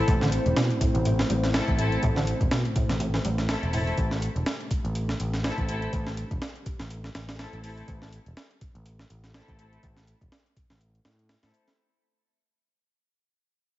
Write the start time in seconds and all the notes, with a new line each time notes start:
Already playing: A3 C4 E4 C5
0.08 A1 A2, kick, closed hi-hat
0.21 D3, snare
0.32 closed hi-hat
0.46 E1, closed hi-hat
0.56 B2, snare, closed hi-hat
0.70 A2, closed hi-hat
0.81 A2, kick, closed hi-hat
0.94 A1 C3, closed hi-hat
1.05 A2, closed hi-hat
1.19 E3, snare
1.29 A1 G3, closed hi-hat
1.43 snare, closed hi-hat
1.54 A3 C4 E4 A4, snare, closed hi-hat
1.68 A1, kick, closed hi-hat
1.78 A2 A3 C4 E4 A4, closed hi-hat
1.92 closed hi-hat
2.03 A1 A2, kick, closed hi-hat
2.16 D3, snare
2.27 closed hi-hat
2.41 E1, kick, closed hi-hat
2.51 B2, snare, closed hi-hat
2.65 A2, closed hi-hat
2.76 A2, kick, closed hi-hat
2.89 A1 C3, snare, closed hi-hat
3.00 A2, closed hi-hat
3.14 E3, snare
3.25 A1 G3, closed hi-hat
3.38 snare, closed hi-hat
3.49 A3 C4 E4 A4, snare, closed hi-hat
3.63 E1, closed hi-hat
3.73 A2 A3 C4 E4 A4, closed hi-hat, open hi-hat
3.87 closed hi-hat
3.98 A1 D4 G4, kick, closed hi-hat
4.11 snare
4.22 closed hi-hat
4.36 E1, closed hi-hat
4.46 snare, closed hi-hat
4.60 closed hi-hat
4.71 kick, closed hi-hat
4.84 A1, closed hi-hat
4.95 closed hi-hat
5.09 snare
5.20 A1, closed hi-hat
5.34 snare, closed hi-hat
5.44 A3 C4 E4 A4, snare, closed hi-hat
5.58 A1, kick, closed hi-hat
5.69 A3 C4 E4 A4, closed hi-hat
5.82 closed hi-hat
5.93 A1, kick, closed hi-hat
6.07 snare
6.17 closed hi-hat
6.31 E1, kick, closed hi-hat
6.42 snare, closed hi-hat
6.56 closed hi-hat
6.66 kick, closed hi-hat
6.79 A1, snare, closed hi-hat
6.90 closed hi-hat
7.04 snare
7.15 A1, snare, closed hi-hat
7.29 snare, closed hi-hat
7.39 A3 C4 E4 A4, snare, closed hi-hat
7.53 A1, closed hi-hat
7.64 A3 C4 E4 A4, closed hi-hat, open hi-hat
7.78 closed hi-hat
7.88 A1, kick, closed hi-hat
8.02 snare
8.13 closed hi-hat
8.26 E1, closed hi-hat
8.37 snare, closed hi-hat
8.51 closed hi-hat
8.61 kick, closed hi-hat
8.75 A1, closed hi-hat
8.86 closed hi-hat
8.99 snare
9.10 A1, closed hi-hat
9.24 snare, closed hi-hat
9.34 A3 C4 E4 A4, snare, closed hi-hat
9.48 A1, kick, closed hi-hat
9.59 A3 C4 E4 A4, closed hi-hat
9.73 closed hi-hat
9.83 A1, kick, closed hi-hat
9.97 snare, closed hi-hat
10.07 closed hi-hat
10.21 E1, kick, closed hi-hat
10.32 snare, closed hi-hat
10.46 closed hi-hat
10.57 kick, closed hi-hat
10.70 A1, snare, closed hi-hat
10.81 closed hi-hat
10.95 closed hi-hat
11.05 A2, snare, closed hi-hat
11.19 closed hi-hat
11.29 snare, closed hi-hat
11.43 A2 A3 C4 E4 A4, snare, closed hi-hat
11.54 closed hi-hat
11.68 snare, closed hi-hat